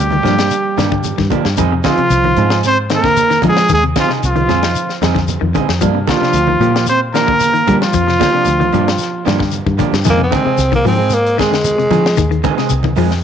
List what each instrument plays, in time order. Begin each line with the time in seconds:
Already playing: fingered electric bass D2, trombone G3, trumpet G4
0.10 clean electric guitar D#3, closed hi-hat, high conga
0.23 fingered electric bass G2, clean electric guitar F3 A#3 D4 G4, snare, closed hi-hat, low conga, shekere
0.37 clean electric guitar A#3 D4 G4, snare, closed hi-hat
0.51 closed hi-hat, high conga, shekere
0.77 fingered electric bass G2, clean electric guitar D#3 A#3 D4 G4, snare, closed hi-hat, low conga, shekere
0.92 clean electric guitar D3, kick
1.04 closed hi-hat, high conga, shekere
1.18 fingered electric bass G2, clean electric guitar D#3, kick, snare
1.30 clean electric guitar D3 F3 A#3 D4 G4, kick, closed hi-hat, high conga, low conga, shekere
1.45 fingered electric bass G2, snare
1.57 fingered electric bass F2, clean electric guitar D#3 C4 D#4 G#4, kick, closed hi-hat, high conga, low conga, shekere
1.72 clean electric guitar C3
1.83 clean electric guitar D3 C4 D#4 G#4, trombone F3, trumpet F4, kick, snare, closed hi-hat, high conga, shekere
1.98 clean electric guitar C3, muted fingered electric bass stroke, closed hi-hat
2.10 fingered electric bass C2, closed hi-hat, high conga, shekere
2.24 clean electric guitar D#3, high conga
2.37 fingered electric bass G#2, clean electric guitar C4 D#4 G#4, closed hi-hat, low conga, shekere
2.50 clean electric guitar D#4 G#4, snare
2.63 trombone C4, trumpet C5, snare, closed hi-hat, high conga, shekere
2.90 clean electric guitar D#3 C4 D#4 G#4, trombone A#3, snare, closed hi-hat, shekere
2.95 trumpet A#4
3.04 fingered electric bass F2, clean electric guitar D3, kick, snare
3.17 closed hi-hat, high conga, shekere
3.30 clean electric guitar D#3, snare, closed hi-hat
3.42 clean electric guitar D3 C4 D#4 G#4, fingered electric bass F3, trombone G#3, kick, closed hi-hat, high conga, low conga, shekere
3.48 trumpet G#4
3.57 snare
3.69 fingered electric bass D#2, clean electric guitar D#3, trombone G#3, kick, closed hi-hat, high conga, shekere
3.73 trumpet G#4
3.82 clean electric guitar C3, closed hi-hat
3.96 clean electric guitar D3 C4 D#4 G#4, trombone F3, trumpet F4, kick, snare, closed hi-hat, high conga, shekere
4.09 clean electric guitar C3 D#4 G#4, snare
4.23 fingered electric bass C2, trombone F3, trumpet F4, closed hi-hat, high conga, shekere
4.36 clean electric guitar D#3, closed hi-hat, high conga
4.49 fingered electric bass F2, clean electric guitar F3 C4 G#4, muted clean electric guitar stroke, snare, closed hi-hat, high conga, low conga, shekere
4.63 clean electric guitar D#4, snare, closed hi-hat
4.75 closed hi-hat, high conga, shekere
4.89 snare
5.01 fingered electric bass F2, clean electric guitar D#3 C4 D#4 G#4, snare, closed hi-hat, low conga, shekere
5.15 clean electric guitar D3, kick, snare
5.27 closed hi-hat, high conga, shekere
5.41 fingered electric bass F2, clean electric guitar D#3
5.54 clean electric guitar D3 C4 D#4 G#4, kick, closed hi-hat, high conga, low conga, shekere
5.69 fingered electric bass F2, snare
5.81 fingered electric bass G2, clean electric guitar F3 A#3 D4, muted clean electric guitar stroke, kick, closed hi-hat, high conga, low conga, shekere
5.95 clean electric guitar C3
6.07 clean electric guitar D3 F3 A#3 D4 G4, trombone F3, trumpet F4, kick, snare, closed hi-hat, high conga, shekere
6.21 clean electric guitar C3 A#3 D4 G4, muted fingered electric bass stroke, snare, closed hi-hat
6.33 fingered electric bass D2, closed hi-hat, high conga, shekere
6.47 clean electric guitar D#3, high conga
6.60 fingered electric bass A#2, clean electric guitar F3 A#3 G4, muted clean electric guitar stroke, closed hi-hat, high conga, low conga, shekere
6.74 clean electric guitar A#3 G4, muted clean electric guitar stroke, snare
6.87 trombone C4, trumpet C5, closed hi-hat, high conga, shekere
7.14 clean electric guitar D#3 F3 A#3 D4 G4, trombone A#3, trumpet A#4, snare, closed hi-hat, shekere
7.27 fingered electric bass G2, clean electric guitar D3, kick
7.40 closed hi-hat, high conga, shekere
7.54 clean electric guitar D#3, closed hi-hat
7.67 clean electric guitar D3 F3 A#3 D4 G4, fingered electric bass G3, kick, closed hi-hat, high conga, low conga, shekere
7.81 trombone F3, trumpet F4, snare
7.93 fingered electric bass F2, clean electric guitar F3, kick, closed hi-hat, high conga, shekere
8.08 clean electric guitar C3, snare, closed hi-hat
8.19 clean electric guitar D3 F3 A#3 D4, muted clean electric guitar stroke, kick, snare, closed hi-hat, high conga, shekere
8.32 clean electric guitar C3 A#3 D4 G4
8.45 fingered electric bass D2, closed hi-hat, high conga, shekere
8.60 clean electric guitar D#3, closed hi-hat, high conga
8.72 fingered electric bass G2, clean electric guitar F3 A#3 D4 G4, closed hi-hat, high conga, low conga, shekere
8.88 snare, closed hi-hat
8.98 snare, closed hi-hat, high conga, shekere
9.25 fingered electric bass G2, clean electric guitar D#3 F3 A#3 D4 G4, snare, closed hi-hat, low conga, shekere
9.39 clean electric guitar D3, kick, snare
9.51 closed hi-hat, high conga, shekere
9.66 fingered electric bass G2, clean electric guitar D#3, kick
9.78 clean electric guitar D3 F3 A#3 D4 G4, kick, closed hi-hat, high conga, low conga, shekere
9.92 fingered electric bass G2, snare, high conga
10.04 fingered electric bass F2, clean electric guitar D#3 G#3 C4 G#4, kick, snare, closed hi-hat, high conga, low conga, shekere
10.10 tenor saxophone A#3
10.18 clean electric guitar C3
10.23 tenor saxophone C4
10.31 clean electric guitar D3 D#3 G#3 C4 G#4, kick, closed hi-hat, high conga, shekere
10.45 clean electric guitar C3 G#3 C4 G#4, muted fingered electric bass stroke
10.58 fingered electric bass C2, closed hi-hat, high conga, shekere
10.72 clean electric guitar D#3, tenor saxophone A#3, kick, closed hi-hat, high conga
10.84 fingered electric bass G#2, clean electric guitar D#3 F3 C4 G#4, tenor saxophone C4, open hi-hat, low conga, shekere
10.98 clean electric guitar G#3 C4 G#4
11.10 tenor saxophone A#3, closed hi-hat, high conga, shekere
11.27 closed hi-hat
11.38 clean electric guitar D#3 G#3 C4 G#4, tenor saxophone G#3, kick, snare, closed hi-hat, shekere
11.51 fingered electric bass F2, clean electric guitar D3, snare, closed hi-hat
11.64 closed hi-hat, high conga, shekere
11.78 clean electric guitar C3, closed hi-hat
11.90 clean electric guitar D3 D#3 G#3 C4 G#4, fingered electric bass F3, closed hi-hat, high conga, low conga, shekere
12.06 snare
12.17 fingered electric bass D#2, clean electric guitar D#3, kick, closed hi-hat, shekere
12.31 clean electric guitar D#3, closed hi-hat
12.44 clean electric guitar D3 D#3 G#3 C4 G#4, kick, closed hi-hat, high conga, shekere
12.57 clean electric guitar C3 G#3 C4 G#4, snare, closed hi-hat
12.70 fingered electric bass C2, closed hi-hat, high conga, shekere
12.83 clean electric guitar D#3, kick, high conga
12.96 fingered electric bass F2, clean electric guitar D#3 F3 G#3 C4 G#4, open hi-hat, low conga, shekere
13.11 snare